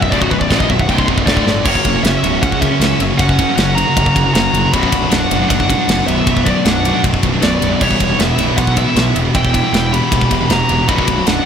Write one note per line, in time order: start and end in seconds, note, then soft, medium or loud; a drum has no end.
0.00 0.11 B1 medium
0.00 0.10 F#2 medium
0.00 0.13 B2 loud
0.00 0.11 E5 loud
0.00 kick medium
0.11 0.29 B0 loud
0.11 0.30 B1 loud
0.11 0.30 F#2 loud
0.11 0.30 B2 loud
0.11 0.21 D5 loud
0.11 kick medium
0.11 crash medium
0.22 0.31 F#4 medium
0.22 kick medium
0.31 0.48 B0 medium
0.31 0.48 B1 medium
0.31 0.49 F#2 medium
0.31 0.50 B2 loud
0.31 0.39 B4 loud
0.31 kick medium
0.40 0.48 D5 loud
0.40 kick medium
0.49 0.67 A1 medium
0.49 0.68 B1 medium
0.49 0.69 F#2 medium
0.49 0.69 B2 loud
0.49 0.59 D5 medium
0.49 kick medium
0.49 snare loud
0.49 crash medium
0.59 0.69 D#5 medium
0.59 kick medium
0.69 0.87 B0 loud
0.69 0.87 B1 medium
0.69 0.87 F#2 medium
0.69 0.88 B2 medium
0.69 0.79 E5 loud
0.69 kick medium
0.79 0.89 F#5 loud
0.79 kick medium
0.88 1.06 C1 loud
0.88 1.07 C2 loud
0.88 1.07 G2 loud
0.88 1.07 C3 loud
0.88 0.99 G5 medium
0.88 kick medium
0.88 crash medium
0.98 1.04 C6 medium
0.98 kick loud
1.08 1.27 C1 loud
1.08 1.26 C2 loud
1.08 1.26 G2 loud
1.08 1.26 C3 loud
1.08 kick loud
1.18 kick medium
1.26 1.44 D1 medium
1.26 1.45 D2 medium
1.26 1.45 A2 medium
1.26 1.46 D3 loud
1.26 1.63 A3 medium
1.26 1.65 D5 medium
1.26 kick medium
1.26 snare loud
1.26 crash medium
1.37 kick medium
1.46 1.63 G1 medium
1.46 1.64 D2 medium
1.46 1.64 A2 medium
1.46 1.65 D3 loud
1.46 snare medium
1.65 1.78 F#1 medium
1.65 1.83 F#2 loud
1.65 1.84 C#3 loud
1.65 1.84 F#3 loud
1.65 2.01 A#3 medium
1.65 2.24 A#3 loud
1.65 2.24 C#4 loud
1.65 2.23 F#4 medium
1.65 2.05 C#5 medium
1.65 kick loud
1.65 crash loud
1.75 kick medium
1.85 1.97 F#1 medium
1.85 1.94 F#2 medium
1.85 1.93 C#3 medium
1.85 kick loud
1.85 ride medium
1.95 2.02 F#2 medium
1.95 2.03 C#3 medium
2.03 2.15 F#1 medium
2.03 2.21 F#2 medium
2.03 2.21 C#3 medium
2.03 2.39 C#4 medium
2.03 2.42 E5 loud
2.03 snare loud
2.03 ride loud
2.23 2.35 C#1 medium
2.23 2.31 F#2 medium
2.23 2.31 C#3 medium
2.23 3.20 F#3 medium
2.23 3.19 A#3 medium
2.23 3.19 C#4 medium
2.23 3.22 F#4 medium
2.23 ride medium
2.32 2.41 F#2 medium
2.32 2.41 C#3 medium
2.42 2.67 C#2 loud
2.42 2.60 F#2 medium
2.42 2.60 C#3 loud
2.42 2.59 C#4 medium
2.42 2.61 F#5 loud
2.42 kick loud
2.42 ride loud
2.52 kick medium
2.60 2.70 F#2 medium
2.60 2.70 C#3 medium
2.60 2.99 C#4 medium
2.60 3.00 E5 medium
2.60 kick medium
2.60 ride medium
2.71 2.79 F#2 medium
2.71 2.80 C#3 medium
2.80 2.92 C#2 loud
2.80 2.98 F#2 medium
2.80 2.98 C#3 loud
2.80 snare loud
2.80 ride loud
2.99 3.12 F#1 medium
2.99 3.09 F#2 medium
2.99 3.09 C#3 medium
2.99 ride medium
3.10 3.19 F#2 medium
3.10 3.19 C#3 medium
3.18 3.43 F#1 loud
3.18 3.37 F#2 medium
3.18 3.37 C#3 medium
3.18 3.78 F#3 loud
3.18 3.77 A#3 loud
3.18 3.54 C#4 medium
3.18 3.76 C#4 loud
3.18 3.55 F#5 medium
3.18 kick loud
3.18 ride loud
3.22 3.76 F#4 loud
3.29 kick medium
3.39 3.48 F#2 medium
3.39 3.48 C#3 medium
3.39 kick loud
3.39 ride medium
3.49 3.57 F#2 medium
3.49 3.58 C#3 loud
3.56 3.82 F#1 medium
3.56 3.76 F#2 medium
3.56 3.76 C#3 medium
3.56 3.75 C#4 medium
3.56 3.77 F#5 loud
3.56 snare loud
3.56 ride loud
3.75 3.85 F#2 medium
3.75 3.85 C#3 medium
3.75 4.75 F#3 medium
3.75 4.72 A#3 medium
3.75 4.72 C#4 medium
3.75 4.30 F#4 loud
3.75 4.76 F#4 medium
3.75 4.30 A#5 loud
3.75 ride medium
3.86 3.95 F#2 medium
3.86 3.96 C#3 medium
3.97 4.09 F#1 loud
3.97 4.14 F#2 medium
3.97 4.14 C#3 loud
3.97 kick loud
3.97 ride loud
4.06 kick medium
4.16 4.28 F#1 loud
4.16 4.24 F#2 medium
4.16 4.23 C#3 medium
4.16 kick medium
4.16 ride medium
4.24 4.34 F#2 medium
4.24 4.34 C#3 loud
4.34 4.47 F#1 medium
4.34 4.52 F#2 medium
4.34 4.52 C#3 medium
4.34 4.70 F#4 medium
4.34 4.72 A#5 loud
4.34 snare loud
4.34 ride loud
4.53 4.66 F#1 loud
4.53 4.63 F#2 medium
4.53 4.62 C#3 medium
4.53 ride medium
4.63 4.72 F#2 medium
4.63 4.73 C#3 medium
4.71 4.85 B0 loud
4.71 4.91 B1 loud
4.71 4.91 F#2 loud
4.71 4.92 B2 loud
4.71 5.08 F#4 loud
4.71 5.13 B5 loud
4.71 kick loud
4.71 ride loud
4.76 5.31 F#3 loud
4.76 5.30 D4 loud
4.83 kick medium
4.92 5.05 B0 medium
4.92 5.00 B1 medium
4.92 5.00 F#2 medium
4.92 kick medium
4.92 ride medium
5.01 5.10 B1 medium
5.01 5.11 F#2 medium
5.10 5.24 B0 medium
5.10 5.29 B1 medium
5.10 5.29 F#2 medium
5.10 5.47 D4 medium
5.10 5.48 F#5 loud
5.10 snare loud
5.10 ride loud
5.30 5.43 F#1 loud
5.30 5.39 B1 medium
5.30 5.38 F#2 medium
5.30 6.27 B2 medium
5.30 6.26 F#3 medium
5.30 6.26 D4 medium
5.30 ride medium
5.39 5.48 B1 medium
5.39 5.49 F#2 medium
5.48 5.74 F#1 loud
5.48 5.67 B1 medium
5.48 5.67 F#2 loud
5.48 6.03 D4 medium
5.48 6.07 F#5 loud
5.48 kick loud
5.48 ride loud
5.60 kick medium
5.68 5.77 B1 medium
5.68 5.77 F#2 loud
5.68 kick medium
5.68 ride medium
5.78 5.87 B1 medium
5.78 5.87 F#2 medium
5.88 6.00 F#1 loud
5.88 6.06 B1 medium
5.88 6.05 F#2 loud
5.88 snare loud
5.88 ride loud
6.06 6.20 B0 loud
6.06 6.16 B1 medium
6.06 6.16 F#2 medium
6.06 6.43 B3 medium
6.06 6.47 E5 loud
6.06 ride medium
6.17 6.25 B1 medium
6.17 6.25 F#2 medium
6.26 6.51 B0 loud
6.26 6.44 B1 medium
6.26 6.44 F#2 loud
6.26 6.85 B2 loud
6.26 6.85 F#3 loud
6.26 kick loud
6.26 ride loud
6.30 6.84 D4 loud
6.37 kick medium
6.45 6.55 B1 medium
6.45 6.54 F#2 medium
6.45 6.63 B3 medium
6.45 6.66 D5 medium
6.45 kick medium
6.45 ride medium
6.55 6.64 B1 medium
6.55 6.65 F#2 medium
6.65 6.90 B0 loud
6.65 6.83 B1 medium
6.65 6.83 F#2 medium
6.65 7.01 D4 medium
6.65 7.01 F#5 medium
6.65 snare loud
6.65 ride loud
6.84 6.93 B1 medium
6.84 6.92 F#2 medium
6.84 7.81 B2 medium
6.84 7.81 F#3 medium
6.84 7.80 D4 medium
6.84 ride medium
6.93 7.03 B1 medium
6.93 7.03 F#2 medium
7.04 7.16 B0 loud
7.04 7.21 B1 medium
7.04 7.21 F#2 medium
7.04 kick loud
7.04 ride loud
7.14 kick loud
7.23 7.35 B0 loud
7.23 7.32 B1 medium
7.23 7.31 F#2 medium
7.23 kick medium
7.23 ride medium
7.33 7.40 B1 medium
7.33 7.40 F#2 medium
7.41 7.55 B0 medium
7.41 7.59 B1 medium
7.41 7.59 F#2 loud
7.41 7.78 B3 medium
7.41 7.82 D5 medium
7.41 snare loud
7.41 ride loud
7.60 7.74 B0 medium
7.60 7.69 B1 medium
7.60 7.69 F#2 medium
7.60 ride medium
7.70 7.80 B1 medium
7.70 7.80 F#2 medium
7.80 7.93 E1 loud
7.80 7.99 E2 loud
7.80 7.98 B2 loud
7.80 7.99 E3 loud
7.80 8.17 G3 medium
7.80 8.40 G3 loud
7.80 8.40 B3 loud
7.80 8.39 E4 loud
7.80 8.21 C#5 medium
7.80 kick loud
7.80 crash loud
7.91 kick medium
8.00 8.13 E1 medium
8.00 8.08 E2 medium
8.00 8.08 B2 medium
8.00 kick medium
8.00 ride medium
8.09 8.17 E2 medium
8.09 8.18 B2 medium
8.18 8.31 E1 medium
8.18 8.36 E2 medium
8.18 8.36 B2 medium
8.18 8.55 B3 medium
8.18 8.57 E5 loud
8.18 snare loud
8.18 ride loud
8.38 8.50 B0 medium
8.38 8.46 E2 medium
8.38 8.46 B2 medium
8.38 9.35 E3 medium
8.38 9.35 G3 medium
8.38 9.37 B3 medium
8.38 9.34 E4 medium
8.38 ride medium
8.42 9.34 E2 medium
8.42 9.34 B2 medium
8.47 8.56 E2 medium
8.47 8.56 B2 loud
8.57 8.82 B1 loud
8.57 8.75 E2 medium
8.57 8.75 B2 loud
8.57 8.75 B3 medium
8.57 8.76 F#5 loud
8.57 kick loud
8.57 ride loud
8.67 kick loud
8.76 8.85 E2 medium
8.76 8.85 B2 medium
8.76 9.13 B3 medium
8.76 9.14 E5 loud
8.76 kick medium
8.76 ride medium
8.86 8.94 E2 medium
8.86 8.94 B2 medium
8.95 9.08 B1 loud
8.95 9.13 E2 medium
8.95 9.13 B2 medium
8.95 snare loud
8.95 ride loud
9.14 9.28 E1 medium
9.14 9.23 E2 medium
9.14 9.23 B2 medium
9.14 ride medium
9.24 9.33 E2 medium
9.24 9.33 B2 medium
9.34 9.59 E1 loud
9.34 9.52 E2 medium
9.34 9.51 B2 medium
9.34 9.92 E3 medium
9.34 9.92 G3 loud
9.34 9.93 B3 loud
9.34 9.70 E4 medium
9.34 9.91 E4 loud
9.34 9.71 G5 loud
9.34 kick loud
9.34 ride loud
9.45 kick medium
9.53 9.62 E2 medium
9.53 9.61 B2 medium
9.53 kick medium
9.53 ride medium
9.62 9.71 E2 medium
9.62 9.72 B2 loud
9.72 9.97 E1 medium
9.72 9.90 E2 medium
9.72 9.90 B2 medium
9.72 9.91 E4 medium
9.72 9.93 G5 loud
9.72 snare loud
9.72 ride loud
9.92 10.01 E2 medium
9.92 10.01 B2 medium
9.92 10.88 E3 medium
9.92 10.88 G3 medium
9.92 11.46 B3 medium
9.92 10.88 E4 medium
9.92 10.46 G4 loud
9.92 10.51 B5 loud
9.92 ride medium
10.02 10.11 E2 medium
10.02 10.11 B2 loud
10.12 10.24 E1 loud
10.12 10.29 E2 medium
10.12 10.29 B2 loud
10.12 kick loud
10.12 ride loud
10.21 kick loud
10.30 10.43 E1 loud
10.30 10.40 E2 medium
10.30 10.40 B2 loud
10.30 kick medium
10.30 ride medium
10.41 10.49 E2 medium
10.41 10.49 B2 medium
10.49 10.62 E1 loud
10.49 10.68 E2 medium
10.49 10.68 B2 medium
10.49 10.86 G4 medium
10.49 10.88 A#5 loud
10.49 snare loud
10.49 ride loud
10.69 10.82 E1 medium
10.69 10.78 E2 medium
10.69 10.77 B2 medium
10.69 ride medium
10.79 10.88 E2 medium
10.79 10.88 B2 medium
10.88 11.01 B0 loud
10.88 11.07 B1 loud
10.88 11.07 F#2 loud
10.88 11.07 B2 loud
10.88 11.46 F#3 loud
10.88 11.46 D4 loud
10.88 11.24 F#4 medium
10.88 11.24 B5 loud
10.88 kick loud
10.88 ride loud
10.98 kick medium
11.08 11.20 B0 medium
11.08 11.17 B1 medium
11.08 11.16 F#2 medium
11.08 kick medium
11.08 ride medium
11.18 11.26 B1 medium
11.18 11.26 F#2 medium
11.27 11.39 B0 medium
11.27 11.44 B1 medium
11.27 11.45 F#2 medium
11.27 11.46 D4 medium
11.27 11.46 F#5 medium
11.27 snare loud
11.27 ride loud